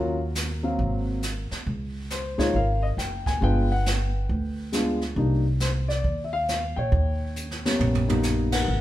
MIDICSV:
0, 0, Header, 1, 5, 480
1, 0, Start_track
1, 0, Tempo, 438596
1, 1822, Time_signature, 4, 2, 24, 8
1, 9639, End_track
2, 0, Start_track
2, 0, Title_t, "Grand piano"
2, 0, Program_c, 0, 0
2, 0, Note_on_c, 0, 54, 68
2, 0, Note_on_c, 0, 58, 53
2, 0, Note_on_c, 0, 61, 53
2, 0, Note_on_c, 0, 65, 69
2, 0, Note_on_c, 0, 66, 53
2, 0, Note_on_c, 0, 70, 72
2, 181, Note_off_c, 0, 54, 0
2, 187, Note_off_c, 0, 58, 0
2, 187, Note_off_c, 0, 61, 0
2, 188, Note_off_c, 0, 65, 0
2, 690, Note_on_c, 0, 54, 58
2, 693, Note_on_c, 0, 58, 57
2, 694, Note_on_c, 0, 60, 56
2, 704, Note_on_c, 0, 77, 72
2, 1307, Note_off_c, 0, 54, 0
2, 1308, Note_off_c, 0, 58, 0
2, 1309, Note_off_c, 0, 60, 0
2, 1314, Note_off_c, 0, 77, 0
2, 1611, Note_off_c, 0, 70, 0
2, 1618, Note_off_c, 0, 66, 0
2, 2312, Note_on_c, 0, 72, 75
2, 2603, Note_on_c, 0, 56, 64
2, 2604, Note_on_c, 0, 58, 54
2, 2612, Note_on_c, 0, 63, 63
2, 2615, Note_on_c, 0, 65, 77
2, 2615, Note_on_c, 0, 73, 77
2, 2627, Note_off_c, 0, 72, 0
2, 2760, Note_off_c, 0, 56, 0
2, 2761, Note_off_c, 0, 58, 0
2, 2765, Note_off_c, 0, 63, 0
2, 2766, Note_off_c, 0, 65, 0
2, 2789, Note_off_c, 0, 73, 0
2, 2799, Note_on_c, 0, 77, 88
2, 2805, Note_on_c, 0, 70, 69
2, 3092, Note_on_c, 0, 75, 82
2, 3111, Note_off_c, 0, 77, 0
2, 3147, Note_off_c, 0, 75, 0
2, 3264, Note_on_c, 0, 79, 87
2, 3578, Note_on_c, 0, 80, 85
2, 3583, Note_off_c, 0, 79, 0
2, 3710, Note_off_c, 0, 70, 0
2, 3726, Note_on_c, 0, 56, 50
2, 3728, Note_on_c, 0, 59, 46
2, 3734, Note_on_c, 0, 62, 54
2, 3742, Note_on_c, 0, 65, 59
2, 3750, Note_off_c, 0, 80, 0
2, 3759, Note_on_c, 0, 71, 80
2, 3760, Note_on_c, 0, 79, 105
2, 4014, Note_off_c, 0, 56, 0
2, 4015, Note_off_c, 0, 59, 0
2, 4018, Note_off_c, 0, 62, 0
2, 4022, Note_off_c, 0, 65, 0
2, 4068, Note_on_c, 0, 78, 83
2, 4071, Note_off_c, 0, 79, 0
2, 4235, Note_off_c, 0, 78, 0
2, 4237, Note_off_c, 0, 71, 0
2, 4253, Note_on_c, 0, 71, 58
2, 5169, Note_on_c, 0, 56, 60
2, 5174, Note_on_c, 0, 59, 50
2, 5179, Note_on_c, 0, 62, 54
2, 5183, Note_on_c, 0, 65, 64
2, 5455, Note_off_c, 0, 56, 0
2, 5457, Note_off_c, 0, 59, 0
2, 5460, Note_off_c, 0, 62, 0
2, 5462, Note_off_c, 0, 65, 0
2, 5464, Note_off_c, 0, 71, 0
2, 5654, Note_on_c, 0, 55, 47
2, 5654, Note_on_c, 0, 58, 46
2, 5663, Note_on_c, 0, 62, 44
2, 5664, Note_on_c, 0, 63, 57
2, 5937, Note_off_c, 0, 55, 0
2, 5937, Note_off_c, 0, 58, 0
2, 5941, Note_off_c, 0, 62, 0
2, 5942, Note_off_c, 0, 63, 0
2, 6141, Note_on_c, 0, 72, 80
2, 6211, Note_off_c, 0, 72, 0
2, 6439, Note_on_c, 0, 74, 82
2, 6799, Note_off_c, 0, 74, 0
2, 6832, Note_on_c, 0, 76, 60
2, 6926, Note_on_c, 0, 77, 101
2, 6931, Note_off_c, 0, 76, 0
2, 7402, Note_on_c, 0, 79, 92
2, 7423, Note_off_c, 0, 77, 0
2, 7426, Note_on_c, 0, 73, 71
2, 8374, Note_on_c, 0, 55, 62
2, 8375, Note_on_c, 0, 58, 57
2, 8376, Note_on_c, 0, 59, 62
2, 8379, Note_on_c, 0, 61, 76
2, 8820, Note_off_c, 0, 55, 0
2, 8820, Note_off_c, 0, 58, 0
2, 8821, Note_off_c, 0, 59, 0
2, 8822, Note_off_c, 0, 61, 0
2, 8840, Note_on_c, 0, 58, 60
2, 8842, Note_on_c, 0, 59, 63
2, 8845, Note_on_c, 0, 55, 62
2, 8853, Note_on_c, 0, 63, 75
2, 8970, Note_off_c, 0, 79, 0
2, 8982, Note_off_c, 0, 73, 0
2, 9328, Note_on_c, 0, 78, 89
2, 9341, Note_on_c, 0, 71, 66
2, 9346, Note_on_c, 0, 70, 64
2, 9459, Note_off_c, 0, 58, 0
2, 9460, Note_off_c, 0, 59, 0
2, 9461, Note_off_c, 0, 55, 0
2, 9465, Note_off_c, 0, 63, 0
2, 9639, Note_off_c, 0, 70, 0
2, 9639, Note_off_c, 0, 71, 0
2, 9639, Note_off_c, 0, 78, 0
2, 9639, End_track
3, 0, Start_track
3, 0, Title_t, "Upright bass"
3, 0, Program_c, 1, 32
3, 0, Note_on_c, 1, 39, 81
3, 816, Note_off_c, 1, 39, 0
3, 861, Note_on_c, 1, 32, 81
3, 1609, Note_off_c, 1, 32, 0
3, 1822, Note_on_c, 1, 37, 84
3, 2739, Note_off_c, 1, 37, 0
3, 2778, Note_on_c, 1, 32, 73
3, 3227, Note_off_c, 1, 32, 0
3, 3250, Note_on_c, 1, 30, 66
3, 3702, Note_off_c, 1, 30, 0
3, 3740, Note_on_c, 1, 31, 84
3, 4657, Note_off_c, 1, 31, 0
3, 4699, Note_on_c, 1, 38, 81
3, 5616, Note_off_c, 1, 38, 0
3, 5649, Note_on_c, 1, 36, 87
3, 6571, Note_off_c, 1, 36, 0
3, 6610, Note_on_c, 1, 39, 81
3, 7361, Note_off_c, 1, 39, 0
3, 7411, Note_on_c, 1, 46, 62
3, 7565, Note_off_c, 1, 46, 0
3, 7571, Note_on_c, 1, 39, 89
3, 8490, Note_off_c, 1, 39, 0
3, 8531, Note_on_c, 1, 34, 84
3, 9450, Note_off_c, 1, 34, 0
3, 9500, Note_on_c, 1, 32, 88
3, 9639, Note_off_c, 1, 32, 0
3, 9639, End_track
4, 0, Start_track
4, 0, Title_t, "Muted upright bass strokes"
4, 1656, Note_on_c, 9, 29, 36
4, 1766, Note_off_c, 9, 29, 0
4, 9639, End_track
5, 0, Start_track
5, 0, Title_t, "Drums"
5, 385, Note_on_c, 9, 44, 57
5, 389, Note_on_c, 9, 38, 54
5, 495, Note_off_c, 9, 44, 0
5, 499, Note_off_c, 9, 38, 0
5, 863, Note_on_c, 9, 25, 46
5, 864, Note_on_c, 9, 36, 30
5, 974, Note_off_c, 9, 36, 0
5, 1340, Note_on_c, 9, 44, 49
5, 1344, Note_on_c, 9, 38, 46
5, 1449, Note_off_c, 9, 44, 0
5, 1454, Note_off_c, 9, 38, 0
5, 1656, Note_on_c, 9, 38, 37
5, 1765, Note_off_c, 9, 38, 0
5, 1825, Note_on_c, 9, 36, 36
5, 1833, Note_off_c, 9, 25, 0
5, 1833, Note_on_c, 9, 25, 51
5, 1935, Note_off_c, 9, 36, 0
5, 2301, Note_on_c, 9, 44, 45
5, 2305, Note_on_c, 9, 38, 53
5, 2410, Note_off_c, 9, 44, 0
5, 2414, Note_off_c, 9, 38, 0
5, 2613, Note_on_c, 9, 36, 42
5, 2618, Note_on_c, 9, 38, 35
5, 2722, Note_off_c, 9, 36, 0
5, 2727, Note_off_c, 9, 38, 0
5, 2782, Note_on_c, 9, 36, 30
5, 2787, Note_off_c, 9, 25, 0
5, 2787, Note_on_c, 9, 25, 45
5, 2892, Note_off_c, 9, 36, 0
5, 3267, Note_on_c, 9, 44, 40
5, 3272, Note_on_c, 9, 38, 46
5, 3377, Note_off_c, 9, 44, 0
5, 3381, Note_off_c, 9, 38, 0
5, 3571, Note_on_c, 9, 36, 50
5, 3576, Note_on_c, 9, 38, 38
5, 3681, Note_off_c, 9, 36, 0
5, 3686, Note_off_c, 9, 38, 0
5, 3743, Note_on_c, 9, 36, 32
5, 3753, Note_off_c, 9, 25, 0
5, 3753, Note_on_c, 9, 25, 46
5, 3852, Note_off_c, 9, 36, 0
5, 4223, Note_on_c, 9, 44, 46
5, 4227, Note_on_c, 9, 38, 55
5, 4333, Note_off_c, 9, 44, 0
5, 4337, Note_off_c, 9, 38, 0
5, 4700, Note_on_c, 9, 36, 30
5, 4703, Note_off_c, 9, 25, 0
5, 4703, Note_on_c, 9, 25, 35
5, 4809, Note_off_c, 9, 36, 0
5, 5172, Note_on_c, 9, 44, 49
5, 5176, Note_on_c, 9, 38, 50
5, 5281, Note_off_c, 9, 44, 0
5, 5285, Note_off_c, 9, 38, 0
5, 5485, Note_on_c, 9, 38, 33
5, 5595, Note_off_c, 9, 38, 0
5, 5655, Note_on_c, 9, 36, 33
5, 5661, Note_off_c, 9, 25, 0
5, 5661, Note_on_c, 9, 25, 53
5, 5765, Note_off_c, 9, 36, 0
5, 6129, Note_on_c, 9, 44, 45
5, 6134, Note_on_c, 9, 38, 59
5, 6239, Note_off_c, 9, 44, 0
5, 6243, Note_off_c, 9, 38, 0
5, 6451, Note_on_c, 9, 38, 33
5, 6560, Note_off_c, 9, 38, 0
5, 6612, Note_off_c, 9, 25, 0
5, 6612, Note_on_c, 9, 25, 47
5, 6612, Note_on_c, 9, 36, 34
5, 6722, Note_off_c, 9, 36, 0
5, 7095, Note_on_c, 9, 44, 46
5, 7100, Note_on_c, 9, 38, 46
5, 7205, Note_off_c, 9, 44, 0
5, 7209, Note_off_c, 9, 38, 0
5, 7575, Note_on_c, 9, 36, 33
5, 7579, Note_off_c, 9, 25, 0
5, 7579, Note_on_c, 9, 25, 57
5, 7684, Note_off_c, 9, 36, 0
5, 8055, Note_on_c, 9, 44, 52
5, 8165, Note_off_c, 9, 44, 0
5, 8221, Note_on_c, 9, 38, 51
5, 8330, Note_off_c, 9, 38, 0
5, 8379, Note_on_c, 9, 38, 62
5, 8488, Note_off_c, 9, 38, 0
5, 8539, Note_on_c, 9, 43, 57
5, 8648, Note_off_c, 9, 43, 0
5, 8699, Note_on_c, 9, 43, 63
5, 8808, Note_off_c, 9, 43, 0
5, 8859, Note_on_c, 9, 43, 74
5, 8968, Note_off_c, 9, 43, 0
5, 9008, Note_on_c, 9, 44, 53
5, 9012, Note_on_c, 9, 38, 52
5, 9117, Note_off_c, 9, 44, 0
5, 9122, Note_off_c, 9, 38, 0
5, 9324, Note_on_c, 9, 51, 70
5, 9328, Note_on_c, 9, 38, 69
5, 9433, Note_off_c, 9, 51, 0
5, 9437, Note_off_c, 9, 38, 0
5, 9501, Note_off_c, 9, 25, 0
5, 9501, Note_on_c, 9, 25, 52
5, 9639, Note_off_c, 9, 25, 0
5, 9639, End_track
0, 0, End_of_file